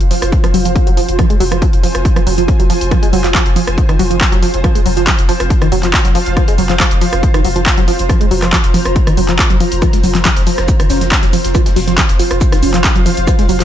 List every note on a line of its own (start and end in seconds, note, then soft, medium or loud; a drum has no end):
0.00 0.11 F1 medium
0.00 13.64 F4 medium
0.00 13.64 C5 medium
0.00 0.47 F5 medium
0.00 closed hi-hat medium
0.11 0.14 F3 loud
0.11 open hi-hat loud
0.22 0.32 F1 medium
0.22 cross-stick medium
0.22 closed hi-hat medium
0.32 kick loud
0.32 closed hi-hat medium
0.44 0.53 F1 medium
0.44 0.47 F3 medium
0.44 3.92 G#5 medium
0.44 cross-stick medium
0.44 closed hi-hat medium
0.54 0.65 F1 loud
0.54 0.57 F#3 loud
0.54 open hi-hat loud
0.65 0.75 F1 medium
0.65 0.71 F3 medium
0.65 closed hi-hat medium
0.76 kick loud
0.76 closed hi-hat medium
0.87 0.97 F1 medium
0.87 0.92 F#3 medium
0.87 closed hi-hat medium
0.97 1.01 F3 loud
0.97 open hi-hat medium
1.08 1.19 F1 medium
1.08 closed hi-hat medium
1.19 1.25 F3 loud
1.19 kick loud
1.19 cross-stick medium
1.19 closed hi-hat medium
1.30 1.40 F1 medium
1.30 1.35 G#3 medium
1.30 closed hi-hat medium
1.40 1.51 F1 loud
1.40 1.44 F#3 loud
1.40 open hi-hat loud
1.51 1.62 F1 medium
1.51 1.57 F3 medium
1.51 cross-stick medium
1.51 closed hi-hat medium
1.62 1.65 F3 loud
1.62 kick loud
1.62 closed hi-hat medium
1.73 1.83 F1 medium
1.73 closed hi-hat medium
1.83 1.87 F3 loud
1.83 open hi-hat medium
1.95 2.05 F1 medium
1.95 cross-stick medium
1.95 closed hi-hat medium
2.05 kick loud
2.05 closed hi-hat medium
2.16 2.26 F1 medium
2.16 2.20 F3 medium
2.16 cross-stick medium
2.16 closed hi-hat medium
2.27 2.37 F1 loud
2.27 2.30 F#3 loud
2.27 open hi-hat loud
2.38 2.48 F1 medium
2.38 2.43 F3 medium
2.38 closed hi-hat medium
2.48 kick loud
2.48 closed hi-hat medium
2.59 2.70 F1 medium
2.59 2.65 F#3 medium
2.59 closed hi-hat medium
2.70 2.73 F3 loud
2.70 open hi-hat medium
2.81 2.91 F1 medium
2.81 closed hi-hat medium
2.91 2.97 F3 loud
2.91 kick loud
2.91 cross-stick medium
2.91 closed hi-hat medium
3.03 3.12 F1 medium
3.03 3.08 G#3 medium
3.03 closed hi-hat medium
3.13 3.24 F1 loud
3.13 3.16 F#3 loud
3.13 open hi-hat loud
3.24 3.34 F1 medium
3.24 3.30 F3 medium
3.24 clap soft
3.24 closed hi-hat medium
3.34 3.38 F3 loud
3.34 kick loud
3.34 clap loud
3.34 closed hi-hat medium
3.46 3.56 F1 medium
3.46 closed hi-hat medium
3.56 3.60 F3 loud
3.56 open hi-hat medium
3.67 3.78 F1 medium
3.67 cross-stick loud
3.67 closed hi-hat medium
3.78 kick loud
3.78 closed hi-hat medium
3.89 3.99 F1 medium
3.89 3.94 D#3 medium
3.89 7.37 F5 medium
3.89 cross-stick medium
3.89 closed hi-hat medium
3.99 4.10 F1 loud
3.99 4.03 F#3 loud
3.99 open hi-hat loud
4.11 4.21 F1 medium
4.11 4.16 F3 medium
4.11 closed hi-hat medium
4.21 kick loud
4.21 clap loud
4.21 closed hi-hat medium
4.32 4.42 F1 medium
4.32 4.38 F#3 medium
4.32 closed hi-hat medium
4.42 4.46 F3 loud
4.42 open hi-hat medium
4.54 4.64 F1 medium
4.54 closed hi-hat medium
4.64 4.70 F3 loud
4.64 kick loud
4.64 cross-stick medium
4.64 closed hi-hat medium
4.75 4.85 F1 medium
4.75 4.81 G#3 medium
4.75 closed hi-hat medium
4.86 4.96 F1 loud
4.86 4.89 F#3 loud
4.86 open hi-hat loud
4.97 5.07 F1 medium
4.97 5.02 F3 medium
4.97 closed hi-hat medium
5.07 5.11 F3 loud
5.07 kick loud
5.07 clap loud
5.07 closed hi-hat medium
5.18 5.29 F1 medium
5.18 closed hi-hat medium
5.29 5.32 F3 loud
5.29 open hi-hat medium
5.40 5.50 F1 medium
5.40 cross-stick loud
5.40 closed hi-hat medium
5.50 kick loud
5.50 closed hi-hat medium
5.61 5.71 F1 medium
5.61 5.67 D#3 medium
5.61 cross-stick medium
5.61 closed hi-hat medium
5.72 5.83 F1 loud
5.72 5.75 F#3 loud
5.72 open hi-hat loud
5.83 5.93 F1 medium
5.83 5.89 F3 medium
5.83 clap soft
5.83 closed hi-hat medium
5.94 kick loud
5.94 clap loud
5.94 closed hi-hat medium
6.05 6.15 F1 medium
6.05 6.10 F#3 medium
6.05 closed hi-hat medium
6.15 6.19 F3 loud
6.15 open hi-hat medium
6.26 6.36 F1 medium
6.26 closed hi-hat medium
6.37 6.43 F3 medium
6.37 kick loud
6.37 cross-stick medium
6.37 closed hi-hat medium
6.48 6.58 F1 medium
6.48 6.53 G#3 medium
6.48 closed hi-hat medium
6.58 6.69 F1 loud
6.58 6.62 F#3 loud
6.58 open hi-hat loud
6.69 6.80 F1 medium
6.69 6.75 F3 medium
6.69 clap soft
6.69 closed hi-hat medium
6.80 6.83 F3 loud
6.80 kick loud
6.80 clap loud
6.80 closed hi-hat medium
6.91 7.01 F1 medium
6.91 closed hi-hat medium
7.01 7.05 F3 loud
7.01 open hi-hat medium
7.13 7.23 F1 medium
7.13 cross-stick medium
7.13 closed hi-hat medium
7.23 kick loud
7.23 closed hi-hat medium
7.34 7.44 F1 medium
7.34 7.40 D#3 medium
7.34 10.83 A#5 medium
7.34 cross-stick medium
7.34 closed hi-hat medium
7.45 7.55 F1 loud
7.45 7.48 F#3 loud
7.45 open hi-hat loud
7.56 7.66 F1 medium
7.56 7.61 F3 medium
7.56 closed hi-hat medium
7.66 kick loud
7.66 clap loud
7.66 closed hi-hat medium
7.77 7.88 F1 medium
7.77 7.83 F#3 medium
7.77 closed hi-hat medium
7.88 7.91 F3 loud
7.88 open hi-hat medium
7.99 8.09 F1 medium
7.99 closed hi-hat medium
8.09 8.15 F3 loud
8.09 kick loud
8.09 cross-stick medium
8.09 closed hi-hat medium
8.21 8.30 F1 medium
8.21 8.26 G#3 medium
8.21 closed hi-hat medium
8.31 8.42 F1 loud
8.31 8.34 F#3 loud
8.31 open hi-hat loud
8.42 8.52 F1 medium
8.42 8.48 F3 medium
8.42 cross-stick medium
8.42 clap soft
8.42 closed hi-hat medium
8.53 8.56 F3 loud
8.53 kick loud
8.53 clap loud
8.53 closed hi-hat medium
8.64 8.74 F1 medium
8.64 closed hi-hat medium
8.74 8.78 F3 loud
8.74 open hi-hat medium
8.85 8.96 F1 medium
8.85 cross-stick medium
8.85 closed hi-hat medium
8.96 kick loud
8.96 closed hi-hat medium
9.07 9.17 F1 medium
9.07 9.12 D#3 medium
9.07 cross-stick medium
9.07 closed hi-hat medium
9.17 9.28 F1 loud
9.17 9.21 F#3 loud
9.17 open hi-hat loud
9.29 9.39 F1 medium
9.29 9.34 F3 medium
9.29 clap soft
9.29 closed hi-hat medium
9.39 kick loud
9.39 clap loud
9.39 closed hi-hat medium
9.50 9.60 F1 medium
9.50 9.55 F#3 medium
9.50 closed hi-hat medium
9.60 9.64 F3 loud
9.60 open hi-hat medium
9.72 9.82 F1 medium
9.72 closed hi-hat medium
9.82 9.88 F3 medium
9.82 kick loud
9.82 cross-stick medium
9.82 closed hi-hat medium
9.82 shaker medium
9.93 10.03 F1 medium
9.93 9.99 G#3 medium
9.93 snare soft
9.93 closed hi-hat medium
10.04 10.14 F1 loud
10.04 10.07 F#3 loud
10.04 open hi-hat loud
10.04 shaker medium
10.15 10.25 F1 medium
10.15 10.20 F3 medium
10.15 snare soft
10.15 clap soft
10.15 closed hi-hat medium
10.25 10.29 F3 loud
10.25 kick loud
10.25 snare loud
10.25 clap loud
10.25 closed hi-hat medium
10.25 shaker medium
10.36 10.47 F1 medium
10.36 snare soft
10.36 closed hi-hat medium
10.47 10.50 F3 loud
10.47 open hi-hat medium
10.47 shaker medium
10.58 10.68 F1 medium
10.58 cross-stick medium
10.58 snare soft
10.58 closed hi-hat medium
10.68 kick loud
10.68 closed hi-hat medium
10.68 shaker medium
10.80 10.89 F1 medium
10.80 10.85 D#3 medium
10.80 13.64 F5 medium
10.80 cross-stick medium
10.80 closed hi-hat medium
10.90 11.01 F1 loud
10.90 10.99 C#4 medium
10.90 snare soft
10.90 open hi-hat loud
10.90 shaker medium
11.01 11.11 F1 medium
11.01 11.07 F3 medium
11.01 snare soft
11.01 closed hi-hat medium
11.11 kick loud
11.11 snare loud
11.11 clap loud
11.11 closed hi-hat medium
11.11 shaker medium
11.23 11.33 F1 medium
11.23 11.28 F#3 medium
11.23 snare soft
11.23 closed hi-hat medium
11.33 11.37 F3 loud
11.33 open hi-hat medium
11.33 shaker medium
11.44 11.55 F1 medium
11.44 snare soft
11.44 closed hi-hat medium
11.55 11.61 F3 medium
11.55 kick loud
11.55 cross-stick medium
11.55 closed hi-hat medium
11.55 shaker medium
11.66 11.76 F1 medium
11.66 11.71 G#3 medium
11.66 snare medium
11.66 closed hi-hat medium
11.76 11.87 F1 loud
11.76 11.80 F#3 loud
11.76 open hi-hat loud
11.76 open hi-hat medium
11.87 11.98 F1 medium
11.87 11.93 F3 medium
11.87 snare soft
11.87 closed hi-hat medium
11.98 12.01 F3 loud
11.98 kick loud
11.98 snare loud
11.98 clap loud
11.98 closed hi-hat medium
11.98 shaker medium
12.09 12.19 F1 medium
12.09 snare medium
12.09 closed hi-hat medium
12.19 12.23 F3 loud
12.19 open hi-hat medium
12.19 shaker medium
12.31 12.41 F1 medium
12.31 cross-stick medium
12.31 closed hi-hat medium
12.41 kick loud
12.41 closed hi-hat medium
12.41 shaker medium
12.52 12.62 F1 medium
12.52 12.58 D#3 medium
12.52 cross-stick medium
12.52 snare soft
12.52 closed hi-hat medium
12.63 12.73 F1 loud
12.63 12.71 C#4 medium
12.63 open hi-hat loud
12.63 shaker medium
12.74 12.84 F1 medium
12.74 12.79 F3 medium
12.74 clap soft
12.74 closed hi-hat medium
12.84 kick loud
12.84 snare loud
12.84 clap loud
12.84 closed hi-hat medium
12.84 shaker medium
12.95 13.06 F1 medium
12.95 13.01 F#3 medium
12.95 closed hi-hat medium
13.06 13.09 F3 loud
13.06 open hi-hat medium
13.06 shaker medium
13.17 13.27 F1 medium
13.17 closed hi-hat medium
13.27 13.33 F3 loud
13.27 kick loud
13.27 cross-stick medium
13.27 closed hi-hat medium
13.27 shaker medium
13.39 13.48 F1 medium
13.39 13.44 G#3 medium
13.39 snare soft
13.39 closed hi-hat medium
13.49 13.60 F1 loud
13.49 13.52 F#3 loud
13.49 open hi-hat loud
13.49 shaker medium
13.60 13.64 F1 medium
13.60 13.64 F3 medium
13.60 snare soft
13.60 clap soft
13.60 closed hi-hat medium